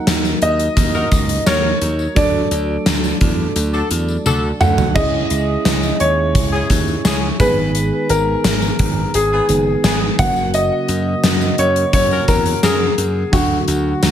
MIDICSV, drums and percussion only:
0, 0, Header, 1, 2, 480
1, 0, Start_track
1, 0, Tempo, 697674
1, 1490, Time_signature, 4, 2, 24, 8
1, 9708, End_track
2, 0, Start_track
2, 0, Title_t, "Drums"
2, 49, Note_on_c, 9, 38, 107
2, 49, Note_on_c, 9, 42, 77
2, 53, Note_on_c, 9, 54, 65
2, 117, Note_off_c, 9, 38, 0
2, 118, Note_off_c, 9, 42, 0
2, 121, Note_off_c, 9, 54, 0
2, 171, Note_on_c, 9, 54, 43
2, 240, Note_off_c, 9, 54, 0
2, 286, Note_on_c, 9, 42, 56
2, 355, Note_off_c, 9, 42, 0
2, 409, Note_on_c, 9, 42, 49
2, 411, Note_on_c, 9, 54, 23
2, 478, Note_off_c, 9, 42, 0
2, 480, Note_off_c, 9, 54, 0
2, 528, Note_on_c, 9, 36, 86
2, 528, Note_on_c, 9, 42, 80
2, 531, Note_on_c, 9, 54, 40
2, 597, Note_off_c, 9, 36, 0
2, 597, Note_off_c, 9, 42, 0
2, 599, Note_off_c, 9, 54, 0
2, 651, Note_on_c, 9, 54, 28
2, 720, Note_off_c, 9, 54, 0
2, 767, Note_on_c, 9, 42, 71
2, 769, Note_on_c, 9, 36, 82
2, 771, Note_on_c, 9, 54, 50
2, 836, Note_off_c, 9, 42, 0
2, 837, Note_off_c, 9, 36, 0
2, 840, Note_off_c, 9, 54, 0
2, 888, Note_on_c, 9, 42, 51
2, 891, Note_on_c, 9, 54, 31
2, 957, Note_off_c, 9, 42, 0
2, 960, Note_off_c, 9, 54, 0
2, 1008, Note_on_c, 9, 38, 110
2, 1008, Note_on_c, 9, 42, 65
2, 1010, Note_on_c, 9, 54, 90
2, 1076, Note_off_c, 9, 42, 0
2, 1077, Note_off_c, 9, 38, 0
2, 1078, Note_off_c, 9, 54, 0
2, 1249, Note_on_c, 9, 42, 65
2, 1249, Note_on_c, 9, 54, 44
2, 1318, Note_off_c, 9, 42, 0
2, 1318, Note_off_c, 9, 54, 0
2, 1369, Note_on_c, 9, 54, 31
2, 1437, Note_off_c, 9, 54, 0
2, 1488, Note_on_c, 9, 42, 76
2, 1489, Note_on_c, 9, 36, 113
2, 1489, Note_on_c, 9, 54, 40
2, 1557, Note_off_c, 9, 42, 0
2, 1558, Note_off_c, 9, 36, 0
2, 1558, Note_off_c, 9, 54, 0
2, 1728, Note_on_c, 9, 54, 49
2, 1729, Note_on_c, 9, 42, 65
2, 1797, Note_off_c, 9, 42, 0
2, 1797, Note_off_c, 9, 54, 0
2, 1968, Note_on_c, 9, 38, 108
2, 1969, Note_on_c, 9, 42, 76
2, 1971, Note_on_c, 9, 54, 66
2, 2037, Note_off_c, 9, 38, 0
2, 2038, Note_off_c, 9, 42, 0
2, 2040, Note_off_c, 9, 54, 0
2, 2089, Note_on_c, 9, 54, 43
2, 2158, Note_off_c, 9, 54, 0
2, 2206, Note_on_c, 9, 42, 57
2, 2210, Note_on_c, 9, 36, 87
2, 2275, Note_off_c, 9, 42, 0
2, 2279, Note_off_c, 9, 36, 0
2, 2448, Note_on_c, 9, 42, 77
2, 2449, Note_on_c, 9, 54, 42
2, 2517, Note_off_c, 9, 42, 0
2, 2518, Note_off_c, 9, 54, 0
2, 2570, Note_on_c, 9, 54, 28
2, 2639, Note_off_c, 9, 54, 0
2, 2687, Note_on_c, 9, 42, 68
2, 2690, Note_on_c, 9, 54, 51
2, 2756, Note_off_c, 9, 42, 0
2, 2759, Note_off_c, 9, 54, 0
2, 2810, Note_on_c, 9, 54, 32
2, 2879, Note_off_c, 9, 54, 0
2, 2929, Note_on_c, 9, 48, 50
2, 2930, Note_on_c, 9, 54, 88
2, 2998, Note_off_c, 9, 48, 0
2, 2998, Note_off_c, 9, 54, 0
2, 3169, Note_on_c, 9, 45, 84
2, 3170, Note_on_c, 9, 54, 45
2, 3238, Note_off_c, 9, 45, 0
2, 3239, Note_off_c, 9, 54, 0
2, 3289, Note_on_c, 9, 43, 90
2, 3290, Note_on_c, 9, 54, 31
2, 3358, Note_off_c, 9, 43, 0
2, 3359, Note_off_c, 9, 54, 0
2, 3409, Note_on_c, 9, 49, 72
2, 3410, Note_on_c, 9, 36, 111
2, 3411, Note_on_c, 9, 54, 42
2, 3478, Note_off_c, 9, 36, 0
2, 3478, Note_off_c, 9, 49, 0
2, 3479, Note_off_c, 9, 54, 0
2, 3648, Note_on_c, 9, 42, 69
2, 3650, Note_on_c, 9, 54, 50
2, 3717, Note_off_c, 9, 42, 0
2, 3718, Note_off_c, 9, 54, 0
2, 3889, Note_on_c, 9, 38, 106
2, 3890, Note_on_c, 9, 42, 73
2, 3892, Note_on_c, 9, 54, 67
2, 3958, Note_off_c, 9, 38, 0
2, 3959, Note_off_c, 9, 42, 0
2, 3961, Note_off_c, 9, 54, 0
2, 4011, Note_on_c, 9, 54, 42
2, 4080, Note_off_c, 9, 54, 0
2, 4128, Note_on_c, 9, 42, 60
2, 4197, Note_off_c, 9, 42, 0
2, 4369, Note_on_c, 9, 36, 94
2, 4369, Note_on_c, 9, 42, 81
2, 4370, Note_on_c, 9, 54, 42
2, 4438, Note_off_c, 9, 36, 0
2, 4438, Note_off_c, 9, 42, 0
2, 4439, Note_off_c, 9, 54, 0
2, 4608, Note_on_c, 9, 42, 75
2, 4609, Note_on_c, 9, 36, 79
2, 4613, Note_on_c, 9, 54, 51
2, 4677, Note_off_c, 9, 42, 0
2, 4678, Note_off_c, 9, 36, 0
2, 4682, Note_off_c, 9, 54, 0
2, 4732, Note_on_c, 9, 54, 32
2, 4801, Note_off_c, 9, 54, 0
2, 4849, Note_on_c, 9, 42, 63
2, 4850, Note_on_c, 9, 38, 106
2, 4852, Note_on_c, 9, 54, 87
2, 4918, Note_off_c, 9, 38, 0
2, 4918, Note_off_c, 9, 42, 0
2, 4921, Note_off_c, 9, 54, 0
2, 5090, Note_on_c, 9, 36, 97
2, 5091, Note_on_c, 9, 42, 65
2, 5093, Note_on_c, 9, 54, 44
2, 5159, Note_off_c, 9, 36, 0
2, 5160, Note_off_c, 9, 42, 0
2, 5162, Note_off_c, 9, 54, 0
2, 5331, Note_on_c, 9, 42, 78
2, 5333, Note_on_c, 9, 54, 39
2, 5399, Note_off_c, 9, 42, 0
2, 5402, Note_off_c, 9, 54, 0
2, 5569, Note_on_c, 9, 42, 70
2, 5572, Note_on_c, 9, 54, 49
2, 5638, Note_off_c, 9, 42, 0
2, 5640, Note_off_c, 9, 54, 0
2, 5810, Note_on_c, 9, 38, 103
2, 5810, Note_on_c, 9, 42, 75
2, 5814, Note_on_c, 9, 54, 64
2, 5878, Note_off_c, 9, 38, 0
2, 5879, Note_off_c, 9, 42, 0
2, 5882, Note_off_c, 9, 54, 0
2, 5930, Note_on_c, 9, 54, 40
2, 5999, Note_off_c, 9, 54, 0
2, 6048, Note_on_c, 9, 42, 61
2, 6050, Note_on_c, 9, 36, 86
2, 6117, Note_off_c, 9, 42, 0
2, 6119, Note_off_c, 9, 36, 0
2, 6289, Note_on_c, 9, 42, 78
2, 6289, Note_on_c, 9, 54, 43
2, 6358, Note_off_c, 9, 42, 0
2, 6358, Note_off_c, 9, 54, 0
2, 6528, Note_on_c, 9, 42, 73
2, 6530, Note_on_c, 9, 54, 50
2, 6597, Note_off_c, 9, 42, 0
2, 6599, Note_off_c, 9, 54, 0
2, 6770, Note_on_c, 9, 38, 104
2, 6770, Note_on_c, 9, 42, 65
2, 6770, Note_on_c, 9, 54, 84
2, 6839, Note_off_c, 9, 38, 0
2, 6839, Note_off_c, 9, 42, 0
2, 6839, Note_off_c, 9, 54, 0
2, 7010, Note_on_c, 9, 36, 102
2, 7010, Note_on_c, 9, 42, 66
2, 7010, Note_on_c, 9, 54, 46
2, 7079, Note_off_c, 9, 36, 0
2, 7079, Note_off_c, 9, 42, 0
2, 7079, Note_off_c, 9, 54, 0
2, 7129, Note_on_c, 9, 54, 30
2, 7198, Note_off_c, 9, 54, 0
2, 7249, Note_on_c, 9, 54, 43
2, 7250, Note_on_c, 9, 42, 79
2, 7318, Note_off_c, 9, 42, 0
2, 7318, Note_off_c, 9, 54, 0
2, 7488, Note_on_c, 9, 42, 71
2, 7490, Note_on_c, 9, 54, 49
2, 7557, Note_off_c, 9, 42, 0
2, 7559, Note_off_c, 9, 54, 0
2, 7730, Note_on_c, 9, 38, 111
2, 7731, Note_on_c, 9, 42, 72
2, 7733, Note_on_c, 9, 54, 66
2, 7799, Note_off_c, 9, 38, 0
2, 7800, Note_off_c, 9, 42, 0
2, 7802, Note_off_c, 9, 54, 0
2, 7850, Note_on_c, 9, 54, 44
2, 7919, Note_off_c, 9, 54, 0
2, 7968, Note_on_c, 9, 42, 61
2, 8037, Note_off_c, 9, 42, 0
2, 8091, Note_on_c, 9, 42, 49
2, 8160, Note_off_c, 9, 42, 0
2, 8209, Note_on_c, 9, 42, 81
2, 8210, Note_on_c, 9, 36, 85
2, 8210, Note_on_c, 9, 54, 42
2, 8278, Note_off_c, 9, 36, 0
2, 8278, Note_off_c, 9, 42, 0
2, 8278, Note_off_c, 9, 54, 0
2, 8331, Note_on_c, 9, 54, 26
2, 8400, Note_off_c, 9, 54, 0
2, 8448, Note_on_c, 9, 42, 71
2, 8450, Note_on_c, 9, 36, 83
2, 8452, Note_on_c, 9, 54, 51
2, 8517, Note_off_c, 9, 42, 0
2, 8519, Note_off_c, 9, 36, 0
2, 8521, Note_off_c, 9, 54, 0
2, 8570, Note_on_c, 9, 42, 54
2, 8639, Note_off_c, 9, 42, 0
2, 8690, Note_on_c, 9, 38, 111
2, 8690, Note_on_c, 9, 42, 64
2, 8691, Note_on_c, 9, 54, 91
2, 8759, Note_off_c, 9, 38, 0
2, 8759, Note_off_c, 9, 42, 0
2, 8760, Note_off_c, 9, 54, 0
2, 8930, Note_on_c, 9, 42, 65
2, 8931, Note_on_c, 9, 54, 43
2, 8999, Note_off_c, 9, 42, 0
2, 9000, Note_off_c, 9, 54, 0
2, 9170, Note_on_c, 9, 36, 104
2, 9171, Note_on_c, 9, 42, 80
2, 9171, Note_on_c, 9, 54, 43
2, 9239, Note_off_c, 9, 36, 0
2, 9239, Note_off_c, 9, 42, 0
2, 9240, Note_off_c, 9, 54, 0
2, 9410, Note_on_c, 9, 42, 71
2, 9411, Note_on_c, 9, 54, 51
2, 9478, Note_off_c, 9, 42, 0
2, 9480, Note_off_c, 9, 54, 0
2, 9650, Note_on_c, 9, 38, 109
2, 9651, Note_on_c, 9, 42, 72
2, 9653, Note_on_c, 9, 54, 68
2, 9708, Note_off_c, 9, 38, 0
2, 9708, Note_off_c, 9, 42, 0
2, 9708, Note_off_c, 9, 54, 0
2, 9708, End_track
0, 0, End_of_file